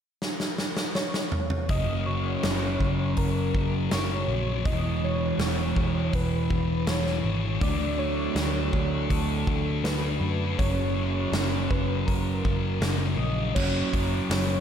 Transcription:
0.22 snare medium
0.40 snare medium
0.58 snare medium
0.77 snare medium
0.95 1.72 C#5 loud
0.95 snare medium
1.14 snare medium
1.32 mid tom medium
1.50 mid tom medium
1.69 2.35 F#1 medium
1.69 2.42 F#2 medium
1.69 2.07 C#3 medium
1.69 2.05 F#3 medium
1.69 4.66 A#3 medium
1.69 2.08 D#5 loud
1.69 kick loud
1.69 open hi-hat soft
1.73 4.67 C#4 medium
2.06 2.44 C#3 medium
2.06 2.44 F#3 medium
2.06 3.19 C#5 loud
2.43 2.77 F#1 medium
2.43 3.89 F#2 medium
2.43 3.55 C#3 medium
2.43 3.53 F#3 medium
2.43 snare loud
2.43 open hi-hat soft
2.80 3.13 F#1 medium
2.80 kick medium
3.17 3.50 F#1 medium
3.17 3.94 A#4 loud
3.17 kick medium
3.17 open hi-hat soft
3.54 3.87 F#1 medium
3.54 3.90 C#3 medium
3.54 3.91 F#3 medium
3.54 kick medium
3.91 4.25 F#1 medium
3.91 4.63 F#2 medium
3.91 4.29 C#3 medium
3.91 4.27 F#3 medium
3.91 4.67 C#5 loud
3.91 snare loud
3.91 open hi-hat soft
4.28 4.61 A#1 medium
4.28 4.64 C#3 medium
4.28 4.63 F#3 medium
4.65 5.31 E1 medium
4.65 5.38 E2 medium
4.65 5.03 B2 medium
4.65 5.01 E3 loud
4.65 7.62 G#3 medium
4.65 7.63 B3 medium
4.65 7.63 E4 medium
4.65 5.06 D#5 loud
4.65 kick loud
4.65 open hi-hat soft
5.02 5.39 B2 medium
5.02 5.39 E3 medium
5.02 6.15 C#5 loud
5.39 5.72 E1 medium
5.39 6.85 E2 medium
5.39 6.50 B2 medium
5.39 6.48 E3 medium
5.39 snare loud
5.39 open hi-hat soft
5.76 6.09 E1 medium
5.76 kick medium
6.13 6.46 E1 medium
6.13 6.91 B4 loud
6.13 kick medium
6.13 open hi-hat soft
6.49 6.84 E1 medium
6.49 6.86 B2 medium
6.49 6.87 E3 medium
6.49 kick medium
6.87 7.20 E1 medium
6.87 7.59 E2 medium
6.87 7.24 B2 medium
6.87 7.23 E3 medium
6.87 7.64 C#5 medium
6.87 snare loud
6.87 open hi-hat soft
7.06 snare soft
7.24 7.57 G#1 medium
7.24 7.60 B2 medium
7.24 7.59 E3 medium
7.61 8.28 D2 medium
7.61 8.34 D3 medium
7.61 10.59 F#3 medium
7.61 7.98 A3 medium
7.61 7.96 D4 loud
7.61 8.00 D5 loud
7.61 kick loud
7.61 open hi-hat soft
7.97 8.35 A3 medium
7.97 8.36 D4 medium
7.97 9.13 C#5 loud
8.35 8.69 D2 medium
8.35 9.82 D3 medium
8.35 9.47 A3 medium
8.35 9.46 D4 medium
8.35 snare loud
8.35 open hi-hat medium
8.73 9.06 D2 medium
8.73 kick medium
9.10 9.43 D2 medium
9.10 9.86 A4 medium
9.10 kick medium
9.10 open hi-hat soft
9.47 9.80 D2 medium
9.47 9.84 A3 medium
9.47 9.84 D4 medium
9.47 kick medium
9.84 10.17 D2 medium
9.84 10.56 D3 medium
9.84 10.22 A3 medium
9.84 10.20 D4 medium
9.84 10.60 B4 medium
9.84 snare loud
9.84 open hi-hat medium
10.20 10.54 F#2 medium
10.20 10.57 A3 medium
10.20 10.56 D4 medium
10.58 11.25 F#1 medium
10.58 11.31 F#2 medium
10.58 10.96 C#3 medium
10.58 10.94 F#3 medium
10.58 13.56 A#3 medium
10.58 13.56 C#4 medium
10.58 11.72 C#5 loud
10.58 kick loud
10.58 open hi-hat soft
10.95 11.32 C#3 medium
10.95 11.33 F#3 medium
11.32 11.66 F#1 medium
11.32 12.80 F#2 medium
11.32 12.45 C#3 medium
11.32 12.43 F#3 medium
11.32 snare loud
11.32 open hi-hat medium
11.71 12.04 F#1 medium
11.71 12.06 B4 medium
11.71 kick medium
12.06 12.41 F#1 medium
12.06 13.14 A#4 medium
12.06 kick medium
12.06 open hi-hat soft
12.44 12.78 F#1 medium
12.44 12.81 C#3 medium
12.44 12.82 F#3 medium
12.44 kick medium
12.81 13.14 F#1 medium
12.81 13.53 F#2 medium
12.81 13.18 C#3 medium
12.81 13.16 F#3 medium
12.81 snare loud
12.81 open hi-hat soft
13.17 13.51 A#1 medium
13.17 13.54 C#3 medium
13.17 13.53 F#3 medium
13.17 13.56 D#5 medium
13.54 13.82 F#1 medium
13.54 14.60 F#2 medium
13.54 14.60 C#3 medium
13.54 14.60 F#3 medium
13.54 14.60 A#3 medium
13.54 14.60 C#4 medium
13.54 14.30 C#5 loud
13.54 kick loud
13.54 crash loud
13.58 14.60 F#4 loud
13.93 14.19 F#1 medium
13.93 kick medium
13.93 open hi-hat medium
14.30 14.56 F#1 medium
14.30 14.60 C#5 medium
14.30 snare loud
14.30 open hi-hat medium

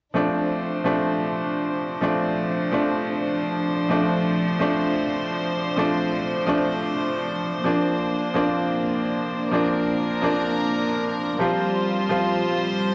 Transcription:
0.14 0.82 F3 medium
0.14 7.61 F3 medium
0.14 0.82 A3 medium
0.14 0.83 C4 medium
0.14 7.61 D4 medium
0.14 0.83 D4 medium
0.14 9.49 C5 medium
0.84 1.99 F3 medium
0.84 1.99 A3 medium
0.84 2.00 C4 medium
0.84 2.00 D4 medium
2.01 2.69 F3 medium
2.01 2.70 A3 medium
2.01 2.70 C4 medium
2.01 2.71 D4 medium
2.72 3.87 F3 medium
2.72 3.87 A3 medium
2.72 3.87 C4 medium
2.72 3.88 D4 medium
3.89 4.57 F3 medium
3.89 4.57 A3 medium
3.89 4.58 C4 medium
3.89 4.58 D4 medium
4.59 5.74 F3 medium
4.59 5.75 A3 medium
4.59 5.75 C4 medium
4.59 5.75 D4 medium
5.76 6.44 F3 medium
5.76 6.45 A3 medium
5.76 6.45 C4 medium
5.76 6.46 D4 medium
6.47 7.62 F3 medium
6.47 7.62 A3 medium
6.47 7.62 C4 medium
6.47 7.63 D4 medium
7.64 8.32 F3 medium
7.64 8.32 A#3 medium
7.64 11.36 A#3 medium
7.64 8.33 C4 medium
7.64 11.36 D4 medium
7.64 8.33 D4 medium
8.34 9.49 F3 medium
8.34 9.50 A#3 medium
8.34 9.50 C4 medium
8.34 9.50 D4 medium
9.51 10.19 F3 medium
9.51 10.20 A#3 medium
9.51 10.20 C4 medium
9.51 10.21 D4 medium
9.51 11.38 A#4 medium
10.22 11.37 F3 medium
10.22 11.37 A#3 medium
10.22 11.37 C4 medium
10.22 11.38 D4 medium
11.39 12.07 F3 medium
11.39 12.07 G3 medium
11.39 12.95 G3 medium
11.39 12.08 C4 medium
11.39 12.95 F4 medium
11.39 12.08 F4 medium
11.39 12.95 C5 medium
12.09 12.95 F3 medium
12.09 12.95 G3 medium
12.09 12.95 C4 medium
12.09 12.95 F4 medium

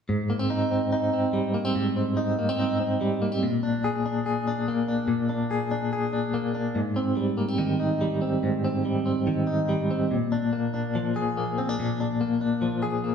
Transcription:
0.09 1.74 G#2 medium
0.30 0.39 A#3 medium
0.39 0.70 C4 soft
0.50 0.91 D#4 medium
0.71 1.12 C4 medium
0.92 2.16 D#4 medium
1.13 1.54 C4 medium
1.33 3.00 G3 medium
1.54 1.65 A#3 medium
1.65 1.95 C4 soft
1.76 3.42 G#2 medium
1.96 2.38 C4 medium
2.17 2.58 D#4 medium
2.39 2.49 A#3 medium
2.49 2.79 C4 soft
2.59 3.47 D#4 medium
2.80 3.21 C4 medium
3.01 3.46 G3 medium
3.22 3.32 A#3 medium
3.32 3.46 C4 soft
3.43 5.07 A#2 medium
3.63 4.04 D4 medium
3.84 4.26 G#4 medium
4.05 4.46 D4 medium
4.26 5.50 G#4 medium
4.47 4.87 D4 medium
4.68 6.33 A#3 medium
4.88 5.28 D4 medium
5.08 6.75 A#2 medium
5.29 5.70 D4 medium
5.51 5.92 G#4 medium
5.71 6.12 D4 medium
5.93 7.20 G#4 medium
6.13 6.53 D4 medium
6.34 6.80 A#3 medium
6.55 6.80 D4 medium
6.75 8.42 G#2 medium
6.96 7.37 C4 medium
7.17 8.00 G3 medium
7.37 7.48 A#3 medium
7.48 8.20 C4 soft
7.58 9.26 D#3 medium
7.80 9.46 D#4 medium
8.01 8.84 G3 medium
8.22 8.63 C4 soft
8.43 10.11 G#2 medium
8.64 9.04 C4 medium
8.85 9.68 G3 medium
9.05 9.90 C4 medium
9.27 10.15 D#3 medium
9.47 10.14 D#4 medium
9.69 10.15 G3 medium
9.91 10.15 C4 medium
10.11 11.78 A#2 medium
10.32 10.73 D4 medium
10.53 11.36 A#3 medium
10.74 11.57 D4 medium
10.95 12.61 F3 medium
11.16 12.82 G#4 medium
11.37 12.20 A#3 medium
11.58 11.69 C4 medium
11.69 11.99 D4 soft
11.79 13.15 A#2 medium
12.00 12.40 D4 medium
12.21 13.03 A#3 medium
12.41 13.15 D4 medium
12.62 13.15 F3 medium
12.83 13.15 G#4 medium
13.04 13.15 A#3 medium

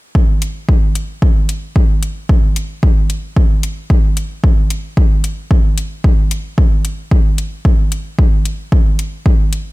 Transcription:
0.15 kick loud
0.42 closed hi-hat medium
0.69 kick loud
0.95 closed hi-hat medium
1.22 kick loud
1.49 closed hi-hat medium
1.76 kick loud
2.03 closed hi-hat medium
2.29 kick loud
2.56 closed hi-hat medium
2.83 kick loud
3.10 closed hi-hat medium
3.37 kick loud
3.63 closed hi-hat medium
3.90 kick loud
4.17 closed hi-hat medium
4.44 kick loud
4.70 closed hi-hat medium
4.97 kick loud
5.24 closed hi-hat medium
5.51 kick loud
5.78 closed hi-hat medium
6.04 kick loud
6.31 closed hi-hat medium
6.58 kick loud
6.85 closed hi-hat medium
7.11 kick loud
7.38 closed hi-hat medium
7.65 kick loud
7.92 closed hi-hat medium
8.19 kick loud
8.45 closed hi-hat medium
8.72 kick loud
8.99 closed hi-hat medium
9.26 kick loud
9.53 closed hi-hat medium

